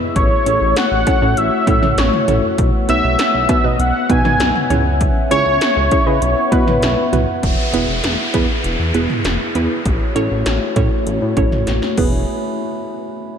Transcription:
Already playing: E4 G#4 B4
0.16 A1 A3 F#4 C#5, kick, closed hi-hat
0.46 A1 C#4 E4 A4 C#5, closed hi-hat
0.61 A1
0.76 F#5, snare, closed hi-hat
0.92 A1
1.07 C#4 E4 A4 C#5, kick, closed hi-hat, cowbell
1.22 A2 C#4 E4 A4 C#5
1.37 A1 E5, closed hi-hat
1.67 A2 C#4 E4 A4 C#5, kick, closed hi-hat
1.83 C#4 E4 A4 C#5, mid tom
1.98 A1 C#5, snare, closed hi-hat
2.13 mid tom
2.28 A1 C#4 E4 A4 C#5, closed hi-hat, mid tom
2.58 B1 B3 B4 F#5, kick, closed hi-hat
2.89 B1 B3 D#4 F#4 B4 E5, closed hi-hat
3.04 B1
3.19 snare, closed hi-hat
3.34 B1
3.49 B3 D#4 F#4 B4, kick, closed hi-hat, cowbell
3.64 B2 B3 D#4 F#4 B4 D#5
3.79 B1 F#5, closed hi-hat
4.09 B2 B3 D#4 F#4 B4 G#5, kick, closed hi-hat
4.25 B3 D#4 F#4 B4, mid tom
4.40 B1, snare, closed hi-hat
4.56 mid tom
4.70 C#2 C#4 E4 G#4 C#5 E5, closed hi-hat, mid tom
5.01 kick, closed hi-hat
5.31 C#2 C#4 E4 G#4 C#5, closed hi-hat
5.46 C#2
5.61 snare, closed hi-hat
5.76 C#2
5.91 C#4 E4 G#4 C#5, kick, closed hi-hat
6.06 C#3 C#4 E4 G#4 B4 D#5
6.21 B1 B3 B4 C#5 F#5, closed hi-hat
6.52 B2 B3 E4 F#4 B4, kick, closed hi-hat
6.67 B3 E4 F#4 B4, mid tom
6.82 B1, snare, closed hi-hat
7.13 B1 B3 E4 F#4 B4, closed hi-hat, mid tom
7.43 E1 E4 G#4 B4, kick, closed hi-hat, downlifter
7.73 E1 B3 E4 G#4 B4, closed hi-hat
7.88 E1
8.04 E1, snare, closed hi-hat
8.34 E2 B3 E4 G#4 B4, kick, closed hi-hat
8.64 E1, closed hi-hat
8.80 E2
8.94 E1 B3 E4 G#4 B4, closed hi-hat
9.10 mid tom
9.25 E1, snare, closed hi-hat
9.55 E2 B3 E4 G#4 B4, closed hi-hat
9.85 A1 A3 F#4 C#5, kick, closed hi-hat
10.16 A1 C#4 E4 A4 C#5, closed hi-hat
10.31 A1
10.46 A1, snare, closed hi-hat
10.76 A2 C#4 E4 A4 C#5, kick, closed hi-hat
11.07 A1, closed hi-hat
11.22 A2
11.37 A1 C#4 E4 A4 C#5, kick, closed hi-hat
11.52 mid tom
11.67 A1, snare, closed hi-hat
11.82 snare
11.98 E1 B3 E4 G#4 B4 E5 G#5 B5, kick, crash

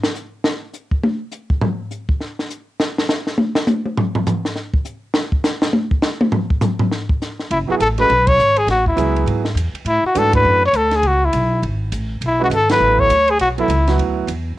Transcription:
0.03 snare
0.15 hi-hat pedal
0.44 snare
0.73 hi-hat pedal
0.91 kick
1.03 high tom
1.32 hi-hat pedal
1.50 kick
1.61 floor tom
1.91 hi-hat pedal
2.09 kick
2.21 snare
2.39 snare
2.50 hi-hat pedal
2.80 snare
2.98 snare
3.09 snare, hi-hat pedal
3.27 snare
3.38 high tom
3.55 snare
3.67 hi-hat pedal, high tom
3.86 high tom
3.97 floor tom
4.15 floor tom
4.26 floor tom, hi-hat pedal
4.45 snare
4.56 snare
4.74 kick
4.85 hi-hat pedal
5.14 snare
5.32 kick
5.44 snare, hi-hat pedal
5.62 snare
5.73 high tom
5.91 kick
6.02 snare, hi-hat pedal
6.21 high tom
6.32 floor tom
6.50 kick
6.61 floor tom, hi-hat pedal
6.79 floor tom
6.92 snare
7.09 kick
7.22 snare, hi-hat pedal
7.39 snare
7.50 F#1 E4, ride
7.67 F#3 B3 E4 F#4 G#4, muted upright bass stroke
7.80 A1 A4, hi-hat pedal, ride
7.98 G#3 C#4 F#4 A4 B4, ride
8.10 B1, ride
8.27 C#5, kick, ride
8.38 G#1, hi-hat pedal
8.56 G#4, ride
8.67 A1 F#4, snare, ride
8.86 E4, kick
8.96 C#2 F#3 B3 E4 G#4, hi-hat pedal, ride
9.16 ride
9.26 G#2, ride
9.45 snare
9.55 E2, hi-hat pedal, ride
9.73 muted upright bass stroke, ride
9.85 A2 E4, ride
10.04 F#4, muted upright bass stroke
10.15 G#2 E3 A3 D4 F#4 A4, hi-hat pedal, ride
10.33 B4, kick, ride
10.45 F#2
10.65 C#5
10.73 D2 A4, hi-hat pedal, ride
10.91 snare, ride
10.96 G#4
11.03 C#2, ride
11.07 F#4
11.25 E4
11.33 B1, hi-hat pedal, ride
11.62 G#1, ride
11.92 A1, hi-hat pedal, ride
12.21 B1, ride
12.26 E4
12.40 G#3 C#4 F#4 B4
12.44 F#4
12.50 G#1, hi-hat pedal, ride
12.54 A4
12.69 F#3 B3 E4 A4 B4, snare, ride
12.80 A1
12.99 C#5, kick
13.10 D2, hi-hat pedal, ride
13.28 G#4, ride
13.39 B1 F#4, ride
13.58 F#3 B3 E4 A4, ride
13.68 C#2, hi-hat pedal, ride
13.88 F#3 B3 E4 F#4, snare, ride
13.98 D2, ride
14.27 E2, hi-hat pedal, ride

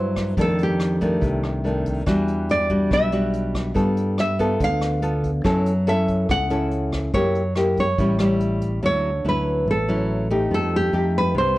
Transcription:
Already playing: G2 F#3 E4 C5
0.16 kick, cross-stick, closed hi-hat
0.37 F2 D#3 A3 D4, kick, closed hi-hat
0.41 A4
0.58 closed hi-hat
0.63 G4
0.79 cross-stick, closed hi-hat
1.01 D#3 A3 D4, kick, closed hi-hat
1.21 C2 C3, kick, closed hi-hat
1.43 cross-stick, closed hi-hat
1.64 D#3 A3 D4, closed hi-hat
1.85 kick, closed hi-hat
2.06 E2 E3 G3 D4 F#4, kick, cross-stick, closed hi-hat
2.28 closed hi-hat
2.49 D5, closed hi-hat
2.70 G3 D4 F#4, kick, closed hi-hat
2.91 B1 B2 E5, kick, cross-stick, closed hi-hat
3.12 G3 D4 F#4, closed hi-hat
3.33 closed hi-hat
3.55 kick, cross-stick, closed hi-hat
3.74 G2 G3 B3 F4 A4, kick, closed hi-hat
3.97 closed hi-hat
4.18 E5, cross-stick, closed hi-hat
4.39 B3 F4 A4, kick, closed hi-hat
4.60 D2 D3, kick, closed hi-hat
4.64 F5
4.81 cross-stick, closed hi-hat
5.02 B3 F4 A4, closed hi-hat
5.24 kick, closed hi-hat
5.44 F#2 F#3 C#4 E4 A4, kick, cross-stick, closed hi-hat
5.66 closed hi-hat
5.87 C#4 E4 A4 E5, closed hi-hat
6.08 kick, closed hi-hat
6.29 C#2 C#3 F#5, kick, cross-stick, closed hi-hat
6.50 C#4 E4 A4, closed hi-hat
6.71 closed hi-hat
6.92 kick, cross-stick, closed hi-hat
7.13 F#2 F#3 A#3 E4 G4 C#5, kick, closed hi-hat
7.35 closed hi-hat
7.55 A#3 E4 G4, cross-stick, closed hi-hat
7.77 C#5, kick, closed hi-hat
7.98 A1 A2 G3 C#4 E4, kick, closed hi-hat
8.18 G3 C#4 E4, cross-stick, closed hi-hat
8.40 closed hi-hat
8.61 kick, closed hi-hat
8.82 D2 D3 F#3 C#4 E4 C#5
9.25 D2 F#3 C#4 E4 B4
9.66 A1 A2
9.71 A4
9.88 F#3 C#4 E4
10.31 A3 D#4 G4
10.51 F2 F3 A4
10.76 G4
10.93 F2 A3 D#4 G4
11.18 B4
11.35 C2 C3 C5

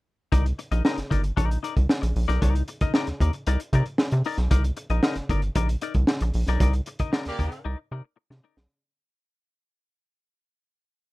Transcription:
0.32 C2 D#4 A#4 D5, kick, closed hi-hat
0.46 muted clean electric guitar stroke, closed hi-hat
0.59 muted clean electric guitar stroke, closed hi-hat
0.71 A#1 D#4 A#4 D#5, closed hi-hat
0.85 D#4 A#4 D#5, snare
0.98 G1, muted clean electric guitar stroke, snare, closed hi-hat
1.11 G1 D#4 A#4 D5, kick, closed hi-hat
1.23 muted clean electric guitar stroke, closed hi-hat
1.37 A#1 D#4 A#4 D5, kick, closed hi-hat
1.51 muted clean electric guitar stroke, closed hi-hat
1.63 D#4 A#4 D5, closed hi-hat
1.76 C2, kick, closed hi-hat
1.89 muted clean electric guitar stroke, snare
2.02 A#1, muted clean electric guitar stroke, closed hi-hat
2.16 A#1, open hi-hat
2.28 B1 D#4 A#4 D5, snare, closed hi-hat
2.42 C2 D#4 A#4 D5, kick, closed hi-hat
2.55 muted clean electric guitar stroke, closed hi-hat
2.68 muted clean electric guitar stroke, closed hi-hat
2.81 D#2 D#4 A#4 D#5, kick, closed hi-hat
2.94 D#4 A#4 D5, snare
3.07 D#2, muted clean electric guitar stroke, snare, closed hi-hat
3.20 D#2 D#4 A#4 D5, kick, closed hi-hat
3.33 closed hi-hat
3.47 C2 D#4 A#4 D5, closed hi-hat
3.60 muted clean electric guitar stroke, closed hi-hat
3.73 C3 D#4 A#4 D5, kick, closed hi-hat
3.86 closed hi-hat
3.98 snare
4.11 C3, muted clean electric guitar stroke, closed hi-hat
4.24 D#4 A#4 D5, open hi-hat
4.37 B1, muted clean electric guitar stroke, snare, closed hi-hat
4.51 C2 D#4 A#4 D5, kick, closed hi-hat
4.64 closed hi-hat
4.77 muted clean electric guitar stroke, closed hi-hat
4.90 A#1 D#4 A#4 D#5, closed hi-hat
5.03 D#4 A#4 D#5, snare
5.15 G1, muted clean electric guitar stroke, snare, closed hi-hat
5.29 G1 D#4 A#4 D5, kick, closed hi-hat
5.42 closed hi-hat
5.55 A#1 D#4 A#4 D5, kick, closed hi-hat
5.69 muted clean electric guitar stroke, closed hi-hat
5.81 D#4 A#4 D5, closed hi-hat
5.94 C2, muted clean electric guitar stroke, kick, closed hi-hat
6.07 muted clean electric guitar stroke, snare
6.20 A#1, muted clean electric guitar stroke, closed hi-hat
6.34 A#1, open hi-hat
6.47 B1 D#4 A#4 D5, snare, closed hi-hat
6.60 C2 D#4 A#4 D5, kick, closed hi-hat
6.73 muted clean electric guitar stroke, closed hi-hat
6.86 muted clean electric guitar stroke, closed hi-hat
6.99 D#2 D#4 A#4 D#5, kick, closed hi-hat
7.12 D#4 A#4 D5, snare
7.25 D#2 A#3 G4 D5, snare, closed hi-hat
7.39 D#2 D#4 A#4 D5, kick, closed hi-hat
7.52 muted clean electric guitar stroke, closed hi-hat
7.65 C2 D#4 A#4 D5
7.78 muted clean electric guitar stroke
7.91 C3 D#4 A#4 D5
8.16 muted clean electric guitar stroke
8.30 C3, muted clean electric guitar stroke, snare
8.44 D#4 A#4 D5
8.57 B1, muted clean electric guitar stroke, snare

